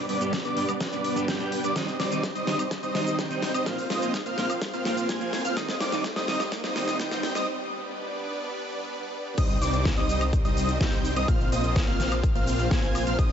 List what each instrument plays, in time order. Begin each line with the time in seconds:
Already playing: supersaw synth G3 B3 D4 B4 D5
0.09 supersaw synth G3 B3 D4 B4 D5, analog synth lead D6, open hi-hat
0.20 clean electric guitar G2 G3 B3 D4 G4, closed hi-hat, shaker
0.33 kick, snare, closed hi-hat, shaker
0.45 supersaw synth G3 B3 D4 B4 D5, analog synth lead D6, closed hi-hat, shaker
0.56 clean electric guitar G2 G3 B3 D4 G4, open hi-hat
0.69 closed hi-hat, high woodblock, shaker
0.81 kick, snare, closed hi-hat, shaker
0.92 supersaw synth G3 B3 D4 B4 D5, analog synth lead D6, closed hi-hat, shaker
1.04 open hi-hat
1.16 clean electric guitar G2 G3 B3 D4 G4, closed hi-hat, shaker
1.28 supersaw synth G3 B3 D4 B4 G5, analog synth lead G6, kick, snare, closed hi-hat, shaker
1.40 clean electric guitar G2 G3 B3 D4 G4, closed hi-hat, shaker
1.52 open hi-hat
1.64 supersaw synth G3 B3 D4 B4 D5, analog synth lead D6, closed hi-hat, shaker
1.75 clean electric guitar D#3 G3 C4 D#4, supersaw synth G3 C4 D#4 C5 D#5, kick, snare, closed hi-hat, riser, shaker
1.88 shaker
2.00 supersaw synth G3 C4 D#4 C5 D5, analog synth lead D6, snare, open hi-hat
2.11 clean electric guitar D#3 G3 C4 D#4, closed hi-hat, shaker
2.23 kick, snare, closed hi-hat, shaker
2.35 supersaw synth G3 C4 D#4 C5 D#5, analog synth lead D#6, closed hi-hat, shaker
2.47 clean electric guitar D#3 G3 C4 D#4, snare, open hi-hat
2.59 closed hi-hat, high woodblock, shaker
2.71 kick, snare, closed hi-hat, shaker
2.83 supersaw synth G3 C4 D#4 C5 D#5, analog synth lead D#6, closed hi-hat, shaker
2.94 clean electric guitar D#3 G3 C4 D#4, snare, open hi-hat
3.07 closed hi-hat, shaker
3.19 supersaw synth G3 C4 D#4 G5, analog synth lead G6, kick, snare, closed hi-hat, shaker
3.30 clean electric guitar D#3 G3 C4 D#4, closed hi-hat, shaker
3.42 snare, open hi-hat
3.54 supersaw synth G3 C4 D#4 C5 D#5, analog synth lead D#6, closed hi-hat, high woodblock, shaker
3.66 clean electric guitar A#2 F3 A#3 C4 F4, supersaw synth A#3 C4 F4 C5 F5, analog synth lead F6, kick, snare, closed hi-hat, shaker
3.78 open hi-hat, shaker
3.90 supersaw synth A#3 C4 F4 C5 D#5, analog synth lead D#6, snare, open hi-hat
4.01 clean electric guitar A#2 F3 A#3 C4 F4, closed hi-hat, shaker
4.14 kick, snare, closed hi-hat, shaker
4.26 supersaw synth A#3 C4 F4 C5 F5, analog synth lead F6, closed hi-hat, shaker
4.37 clean electric guitar A#2 F3 A#3 C4 F4, snare, open hi-hat
4.50 closed hi-hat, high woodblock, shaker
4.62 kick, snare, closed hi-hat, shaker
4.73 supersaw synth A#3 C4 F4 C5 F5, analog synth lead F6, closed hi-hat, shaker
4.85 clean electric guitar A#2 F3 A#3 C4 F4, snare, open hi-hat
4.97 closed hi-hat, shaker
5.09 supersaw synth A#3 C4 F4 C5 G#5, analog synth lead G#6, kick, snare, closed hi-hat, shaker
5.20 clean electric guitar A#2 F3 A#3 C4 F4, closed hi-hat, shaker
5.33 snare, open hi-hat
5.45 supersaw synth A#3 C4 F4 C5 F5, analog synth lead F6, closed hi-hat, shaker
5.56 clean electric guitar D#3 G3 C4 D#4, supersaw synth G3 C4 D#4 C5 D#5, analog synth lead D#6, kick, snare, closed hi-hat, shaker
5.69 snare, shaker
5.81 supersaw synth G3 C4 D#4 C5 D5, analog synth lead D6, snare, open hi-hat
5.92 clean electric guitar D#3 G3 C4 D#4, snare, closed hi-hat, shaker
6.04 kick, snare, closed hi-hat, shaker
6.16 supersaw synth G3 C4 D#4 C5 D#5, analog synth lead D#6, snare, closed hi-hat, shaker
6.28 clean electric guitar D#3 G3 C4 D#4, snare, open hi-hat
6.40 snare, closed hi-hat, high woodblock, shaker
6.52 kick, snare, closed hi-hat, shaker
6.64 supersaw synth G3 C4 D#4 C5 D#5, analog synth lead D#6, snare, closed hi-hat, shaker
6.75 clean electric guitar D#3 G3 C4 D#4, snare, open hi-hat
6.88 snare, closed hi-hat, shaker
7.00 supersaw synth C4 C5, analog synth lead G6, kick, snare, closed hi-hat, shaker
7.11 clean electric guitar D#3 G3 C4 D#4, snare, closed hi-hat, shaker
7.23 snare, open hi-hat
7.35 supersaw synth G3 C4 D#4 C5 D#5, analog synth lead D#6, snare, closed hi-hat, high woodblock, shaker
7.47 supersaw synth B3 D4 B4 D5
9.38 detuned saw bass C2, supersaw synth G3 C4 D#4 C5 D#5, analog synth lead D#6, kick, closed hi-hat, crash, shaker
9.50 shaker
9.62 detuned saw bass C2, supersaw synth G3 C4 D#4 C5 D5, analog synth lead D6, open hi-hat, shaker
9.74 closed hi-hat, shaker
9.85 kick, snare, closed hi-hat, shaker
9.97 detuned saw bass C2, supersaw synth G3 C4 D#4 C5 D#5, analog synth lead D#6, closed hi-hat
10.09 open hi-hat, shaker
10.21 closed hi-hat, high woodblock, shaker
10.33 kick, closed hi-hat, shaker
10.45 detuned saw bass C2, supersaw synth G3 C4 D#4 C5 D#5, analog synth lead D#6, closed hi-hat, shaker
10.57 open hi-hat, shaker
10.69 closed hi-hat, shaker
10.81 detuned saw bass C2, supersaw synth G3 C4 D#4 C5, analog synth lead G6, kick, snare, closed hi-hat, shaker
10.93 closed hi-hat, shaker
11.05 open hi-hat, shaker
11.16 detuned saw bass C2, supersaw synth G3 C4 D#4 C5 D#5, analog synth lead D#6, closed hi-hat, high woodblock, shaker
11.28 detuned saw bass A#1, supersaw synth A#3 C4 F4 C5 F5, analog synth lead F6, kick, closed hi-hat, shaker
11.41 shaker
11.52 detuned saw bass A#1, supersaw synth A#3 C4 F4 C5 D#5, analog synth lead D#6, open hi-hat, shaker
11.64 closed hi-hat, shaker
11.76 kick, snare, closed hi-hat, shaker
11.88 detuned saw bass A#1, supersaw synth A#3 C4 F4 C5 F5, analog synth lead F6, closed hi-hat
12.00 snare, open hi-hat, shaker
12.12 closed hi-hat, high woodblock, shaker
12.23 kick, closed hi-hat, shaker
12.35 detuned saw bass A#1, supersaw synth A#3 C4 F4 C5 F5, analog synth lead F6, closed hi-hat, shaker
12.47 open hi-hat, shaker
12.59 closed hi-hat, shaker
12.71 detuned saw bass A#1, supersaw synth A#3 C4 F4 C5, analog synth lead G#6, kick, snare, closed hi-hat, shaker
12.83 closed hi-hat, shaker
12.95 open hi-hat, high woodblock, shaker
13.07 detuned saw bass A#1, supersaw synth A#3 C4 F4 C5 F5, analog synth lead F6, closed hi-hat, shaker
13.19 detuned saw bass C2, supersaw synth G3 C4 D#4 C5 D#5, analog synth lead D#6, kick, closed hi-hat, shaker